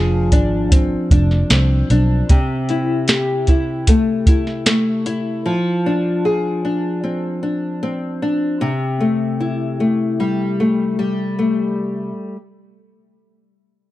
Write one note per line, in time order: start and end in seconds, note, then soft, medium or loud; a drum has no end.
0.00 0.32 F1 medium
0.00 2.29 F3 medium
0.00 0.31 D4 medium
0.00 2.37 G#4 medium
0.32 0.95 G#1 medium
0.32 1.10 D4 medium
0.32 kick medium
0.32 closed hi-hat medium
0.71 1.51 C4 medium
0.71 kick medium
0.71 closed hi-hat medium
1.10 1.42 F1 medium
1.10 1.89 D4 medium
1.10 kick medium
1.10 closed hi-hat medium
1.31 snare soft
1.50 1.82 C2 medium
1.50 3.88 C4 medium
1.50 snare loud
1.50 closed hi-hat medium
1.90 2.21 B1 medium
1.90 2.37 D4 medium
1.90 closed hi-hat medium
2.29 5.46 C3 medium
2.29 kick loud
2.29 closed hi-hat medium
2.69 3.47 E4 medium
2.69 closed hi-hat medium
3.08 5.53 G4 medium
3.08 snare loud
3.08 closed hi-hat medium
3.47 4.27 E4 medium
3.47 kick medium
3.47 closed hi-hat medium
3.87 4.66 A3 medium
3.87 kick medium
3.87 closed hi-hat medium
4.26 5.05 E4 medium
4.26 kick medium
4.26 closed hi-hat medium
4.47 snare soft
4.66 5.53 A3 medium
4.66 snare loud
4.66 closed hi-hat medium
5.06 5.53 E4 medium
5.06 closed hi-hat medium
5.46 8.62 F3 medium
5.86 6.64 D4 medium
6.25 8.70 G#4 medium
6.65 7.42 D4 medium
7.04 7.82 C4 medium
7.43 8.21 D4 medium
7.83 9.00 C4 medium
8.22 8.69 D4 medium
8.61 12.11 C3 medium
9.01 9.80 A3 medium
9.40 12.36 E4 medium
9.80 10.60 A3 medium
10.20 10.98 G3 medium
10.60 11.38 A3 medium
10.99 12.36 G3 medium
11.39 12.36 A3 medium